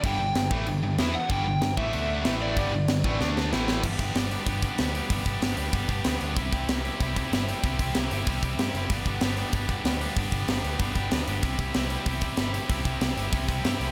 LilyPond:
<<
  \new Staff \with { instrumentName = "Overdriven electric guitar" } { \time 4/4 \key g \major \tempo 4 = 190 g''2. r8 fis''8 | g''4. e''2 d''8~ | d''2~ d''8 r4. | r1 |
r1 | r1 | r1 | r1 |
r1 | r1 | r1 | }
  \new Staff \with { instrumentName = "Distorted electric guitar" } { \time 4/4 \key g \major <g, d g>8 <g, d>8 <g, d>8 <a, e a>8 <g, d>8 <g, d>8 <e b e'>8 r8 | <g, d g>8 <g, d>8 <g, d>8 <a, e a>8 <d a d'>4 <a, e a>4 | <g, d g>8 <g, d>8 <g, d>8 <a, e a>8 <d a d'>4 <a, e a>4 | <g, d g b d' g'>8 <g, d g b d' g'>8 <g, d g b d' g'>8 <g, d g b d' g'>8 <g, d g b d' g'>8 <g, d g b d' g'>8 <g, d g b d' g'>8 <g, d g b d' g'>8 |
<g, d g b d' g'>8 <g, d g b d' g'>8 <g, d g b d' g'>8 <g, d g b d' g'>8 <g, d g b d' g'>8 <g, d g b d' g'>8 <g, d g b d' g'>8 <g, d g b d' g'>8 | <c g c' e' g'>8 <c g c' e' g'>8 <c g c' e' g'>8 <c g c' e' g'>8 <c g c' e' g'>8 <c g c' e' g'>8 <c g c' e' g'>8 <c g c' e' g'>8 | <c g c' e' g'>8 <c g c' e' g'>8 <c g c' e' g'>8 <c g c' e' g'>8 <c g c' e' g'>8 <c g c' e' g'>8 <c g c' e' g'>8 <c g c' e' g'>8 | <g, d g b d' g'>8 <g, d g b d' g'>8 <g, d g b d' g'>8 <g, d g b d' g'>8 <g, d g b d' g'>8 <g, d g b d' g'>8 <g, d g b d' g'>8 <g, d g b d' g'>8 |
<g, d g b d' g'>8 <g, d g b d' g'>8 <g, d g b d' g'>8 <g, d g b d' g'>8 <g, d g b d' g'>8 <g, d g b d' g'>8 <g, d g b d' g'>8 <g, d g b d' g'>8 | <c g c' e' g'>8 <c g c' e' g'>8 <c g c' e' g'>8 <c g c' e' g'>8 <c g c' e' g'>8 <c g c' e' g'>8 <c g c' e' g'>8 <c g c' e' g'>8 | <c g c' e' g'>8 <c g c' e' g'>8 <c g c' e' g'>8 <c g c' e' g'>8 <c g c' e' g'>8 <c g c' e' g'>8 <c g c' e' g'>8 <c g c' e' g'>8 | }
  \new Staff \with { instrumentName = "Distorted electric guitar" } { \clef bass \time 4/4 \key g \major <g, d g>8 <g, d>8 <g, d>8 <a, e a>8 <g, d>8 <g, d>8 <e b e'>8 r8 | <g, d g>8 <g, d>8 <g, d>8 <a, e a>8 <d a d'>4 <a, e a>4 | <g, d g>8 <g, d>8 <g, d>8 <a, e a>8 <d a d'>4 <a, e a>4 | r1 |
r1 | r1 | r1 | r1 |
r1 | r1 | r1 | }
  \new Staff \with { instrumentName = "Picked electric bass" } { \clef bass \time 4/4 \key g \major g,,8 g,,8 g,,8 a,,8 g,,8 g,,8 e,8 r8 | g,,8 g,,8 g,,8 a,,8 d,4 a,,4 | g,,8 g,,8 g,,8 a,,8 d,4 a,,4 | g,,8 g,,8 g,,4 g,,4 d,4 |
g,,8 g,,8 g,,8 d,8 g,,8 g,,8 d,8 d,8 | c,8 c,8 c,4 c,4 g,,4 | c,8 c,8 c,8 g,,8 c,8 c,8 g,8 fis,,8 | g,,8 g,,8 g,,4 g,,4 d,4 |
g,,8 g,,8 g,,8 d,8 g,,8 g,,8 d,8 g,,8 | c,8 c,8 c,4 c,4 g,,4 | c,8 c,8 c,8 g,,8 c,8 c,8 g,8 c,8 | }
  \new DrumStaff \with { instrumentName = "Drums" } \drummode { \time 4/4 <cymc bd>4 <cymc sn>8 bd8 cymc4 <cymc sn>4 | <cymc bd>4 <cymc sn>8 bd8 cymc4 <cymc sn>4 | <cymc bd>4 <cymc sn>8 bd8 sn8 sn8 sn8 sn8 | <cymc bd>8 <hho bd>8 <hho sn>8 hho8 <hho bd>8 <hho bd>8 <hho sn>8 hho8 |
<hho bd>8 <hho bd>8 <hho sn>8 hho8 <hho bd>8 <hho bd>8 <hho sn>8 hho8 | <hho bd>8 <hho bd>8 <hho sn>8 hho8 <hho bd>8 <hho bd>8 <hho sn>8 hho8 | <hho bd>8 <hho bd>8 <hho sn>8 hho8 <hho bd>8 <hho bd>8 <hho sn>8 hho8 | <hho bd>8 <hho bd>8 <hho sn>8 hho8 <hho bd>8 <hho bd>8 <hho sn>8 hho8 |
<hho bd>8 <hho bd>8 <hho sn>8 hho8 <hho bd>8 <hho bd>8 <hho sn>8 hho8 | <hho bd>8 <hho bd>8 <hho sn>8 hho8 <hho bd>8 <hho bd>8 <hho sn>8 hho8 | <hho bd>8 <hho bd>8 <hho sn>8 hho8 <hho bd>8 <hho bd>8 <hho sn>8 hho8 | }
>>